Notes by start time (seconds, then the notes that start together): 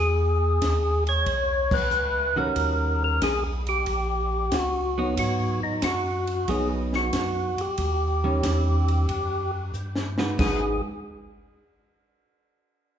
Already playing: E2
0.00 G#4
0.61 D#2, kick, snare, hi-hat pedal, ride
1.07 C#5, ride
1.26 B1, kick, ride
1.71 B4, kick, crash
1.91 C#2, hi-hat pedal
2.36 C#2 D#3 G3 C#4 F#4 A#4
2.56 D#2, kick, ride
3.04 A#4
3.22 B1 G#4, kick, snare, hi-hat pedal, ride
3.67 G4, ride
3.86 A#1, kick, ride
4.52 C#2 F#4, kick, snare, hi-hat pedal, ride
4.98 F#3 B3 D#4
5.17 G#2 F#4, kick, ride
5.63 G#2 D#4
5.82 F#2 F#4, kick, snare, hi-hat pedal, ride
6.27 ride
6.48 B1 F#3 B3 D#4 G#4, kick, ride
6.93 F#4, snare
7.13 F#2, kick, snare, hi-hat pedal, ride
7.57 F#2 G4, ride
7.78 D#2, kick, ride
8.24 D#3 G3 C#4
8.43 E2, kick, snare, hi-hat pedal, ride
8.88 ride
9.09 F#2, kick, ride
9.74 G2, hi-hat pedal
9.96 snare
10.18 G#3 D#4 F#4 B4, snare
10.38 G#1 G#3 D#4 F#4 G#4 B4, kick, snare, crash